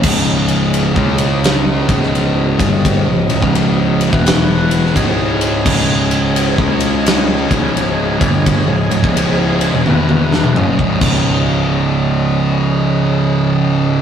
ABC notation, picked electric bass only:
X:1
M:4/4
L:1/16
Q:"Swing" 1/4=86
K:C#m
V:1 name="Picked electric bass" clef=bass
C,,,4- C,,, C,,4- C,, C,,,4 =G,,,2- | =G,,, C,,, C,,, C,,,4 E,,,4- E,,, C,,,4 | C,,,4- C,,, C,,4- C,, C,,,4 =G,,,2- | =G,,, C,,, C,,, C,,,4 E,,, E,,,4 F,,, C,,, C,,,2- |
C,,,16 |]